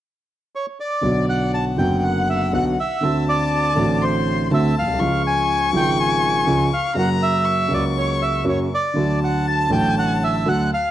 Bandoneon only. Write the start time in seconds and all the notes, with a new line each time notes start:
0.55 C#5
0.80 D5
1.29 F#5
1.54 A5
1.78 G5
1.99 G5
2.04 F#5
2.30 E5
2.54 F#5
2.80 E5
3.29 D5
4.03 C5
4.54 E5
4.79 F5
5.27 G#5
5.77 G5
6.00 G#5
6.74 F5
6.99 F#5
7.23 E5
7.74 D5
7.98 C#5
8.22 E5
8.49 C#5
8.74 D5
9.24 F#5
9.48 A5
9.72 G5
9.99 F#5
10.24 E5
10.48 F#5
10.74 F5